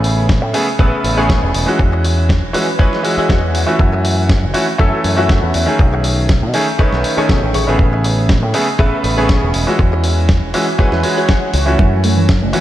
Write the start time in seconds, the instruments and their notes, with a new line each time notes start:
Already playing: picked electric bass A1, grand piano C#3 A3 B3 G#4
0.04 muted clean electric guitar stroke, open hi-hat
0.29 kick, snare
0.42 picked electric bass A2
0.53 grand piano C#3 A3 B3 G#4, muted clean electric guitar stroke, open hi-hat
0.79 picked electric bass A1, grand piano C#3 A3 B3 B4, clean electric guitar G#4 B4 E5, kick
1.04 picked electric bass A1, open hi-hat
1.17 grand piano C#3 A3 B3 G#4, clean electric guitar G#4 B4 C#5
1.29 kick, snare
1.43 picked electric bass E1
1.54 picked electric bass E1, open hi-hat
1.66 grand piano E3 G#3 C#4 F#4
1.79 picked electric bass E2, muted clean electric guitar stroke, kick
1.92 muted clean electric guitar stroke
2.04 muted clean electric guitar stroke, open hi-hat
2.29 kick, snare
2.43 picked electric bass E1
2.53 grand piano E3 G#3 C#4 F#4, clean electric guitar B4, muted clean electric guitar stroke, open hi-hat
2.79 grand piano E3 G#3 C#4 B4, clean electric guitar F#4 G#4 C#5 D#5, kick
2.93 snare
3.03 grand piano E3 G#3 C#4 F#4, open hi-hat
3.18 clean electric guitar F#4 G#4 D#5 E5, muted picked electric bass stroke
3.29 picked electric bass E2, clean electric guitar F#5, kick, snare
3.55 open hi-hat
3.66 grand piano E3 A3 C#4 F#4
3.79 picked electric bass F#2, muted clean electric guitar stroke, kick
3.93 muted clean electric guitar stroke
4.04 muted clean electric guitar stroke, open hi-hat
4.29 kick, snare
4.43 picked electric bass F#1
4.54 grand piano E3 A3 C#4 F#4, muted clean electric guitar stroke, open hi-hat
4.78 picked electric bass F#2, grand piano E3 A3 C#4 A4, clean electric guitar F#4 A4 E5, kick
5.04 picked electric bass F#2, open hi-hat
5.16 grand piano E3 A3 C#4 F#4, clean electric guitar F#4 A4 E5
5.29 kick, snare
5.43 picked electric bass E2
5.54 picked electric bass E2, open hi-hat
5.66 grand piano D#3 A3 C#4 G#4
5.79 picked electric bass B1, muted clean electric guitar stroke, kick
5.93 muted clean electric guitar stroke
6.04 muted clean electric guitar stroke, open hi-hat
6.29 kick, snare
6.42 picked electric bass B2
6.54 grand piano D#3 A3 C#4 G#4, muted clean electric guitar stroke, open hi-hat
6.79 grand piano D#3 A3 C#4 B4, clean electric guitar G#4 A4 C#5 D#5, kick
6.93 picked electric bass B1, snare
7.04 open hi-hat
7.17 grand piano D#3 A3 C#4 G#5, clean electric guitar G#4 A4 C#5 D#5, muted picked electric bass stroke
7.29 picked electric bass B2, kick, snare
7.43 picked electric bass A1
7.54 picked electric bass A1, clean electric guitar G#4 B4 C#5, open hi-hat
7.67 picked electric bass A1, grand piano C#3 A3 B3 G#4
7.79 picked electric bass A1, kick
7.92 muted clean electric guitar stroke
8.04 muted clean electric guitar stroke, open hi-hat
8.29 kick, snare
8.42 picked electric bass A2
8.54 grand piano C#3 A3 B3 G#4, muted clean electric guitar stroke, open hi-hat
8.79 picked electric bass A1, grand piano C#3 A3 B3 B4, clean electric guitar G#4 B4 E5, kick
9.04 picked electric bass A1, open hi-hat
9.17 grand piano C#3 A3 B3 G#4, clean electric guitar G#4 B4 C#5
9.29 kick, snare
9.43 picked electric bass E1
9.54 picked electric bass E1, open hi-hat
9.67 grand piano E3 G#3 C#4 F#4
9.79 picked electric bass E2, muted clean electric guitar stroke, kick
9.92 muted clean electric guitar stroke
10.04 muted clean electric guitar stroke, open hi-hat
10.29 kick, snare
10.42 picked electric bass E1
10.54 grand piano E3 G#3 C#4 F#4, muted clean electric guitar stroke, open hi-hat
10.78 grand piano E3 G#3 C#4 B4, clean electric guitar F#4 G#4 C#5, kick
10.92 picked electric bass E2, snare
11.03 grand piano E3 G#3 C#4 F#4, open hi-hat
11.17 clean electric guitar F#4 G#4 C#5
11.29 clean electric guitar F#5, kick, snare
11.54 picked electric bass C#2, clean electric guitar C#5, open hi-hat
11.66 grand piano E3 A3 C#4 F#4
11.79 picked electric bass F#2, synth arpeggio sound E3, kick, high conga
11.93 synth arpeggio sound F#3
12.04 synth arpeggio sound A3, open hi-hat
12.18 synth arpeggio sound E3, high conga
12.29 synth arpeggio sound F#3, kick, snare
12.42 picked electric bass F#1, synth arpeggio sound A3
12.53 grand piano E3 A3 C#4 F#4, synth arpeggio sound E3, open hi-hat